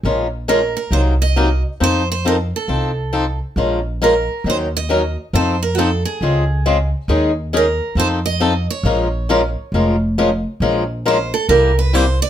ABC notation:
X:1
M:4/4
L:1/16
Q:"Swing" 1/4=136
K:Bbm
V:1 name="Steel-string acoustic guitar"
z4 B2 B2 c2 e4 z2 | c2 c2 B2 =A8 z2 | z4 B4 c2 e4 z2 | c2 B3/2 G/2 =A2 _A8 z2 |
z4 B4 c2 e4 d2- | d12 z4 | z4 c2 =A2 B2 _c2 =c2 =d2 |]
V:2 name="Steel-string acoustic guitar"
[F,A,DFB]2 z2 [F,A,DFB]2 z2 [C,G,B,EB]2 z2 [C,G,B,EB]2 z2 | [F,CE=A]2 z2 [F,CEA]2 z2 [F,CEA]2 z2 [F,CEA]2 z2 | [F,A,DFB]2 z2 [F,A,DFB]2 z2 [E,G,DEB]2 z2 [E,G,DEB]2 z2 | [F,CE=A]2 z2 [F,CEA]2 z2 [D,_A,CF_A]2 z2 [D,A,CFA]2 z2 |
[E,A,DEA]2 z2 [E,A,DEA]2 z2 [F,CE=A]2 z2 [F,CEA]2 z2 | [F,A,DFB]2 z2 [F,A,DFB]2 z2 [F,A,DFB]2 z2 [F,A,DFB]2 z2 | [F,A,DFB]2 z2 [F,A,DFB]2 z2 [C,=G,B,=E=G]2 z2 [C,G,B,EG]2 z2 |]
V:3 name="Upright bass" clef=bass
B,,,8 C,,8 | F,,8 C,,8 | B,,,8 E,,8 | F,,8 D,,8 |
E,,8 F,,8 | B,,,8 F,,,8 | B,,,8 C,,8 |]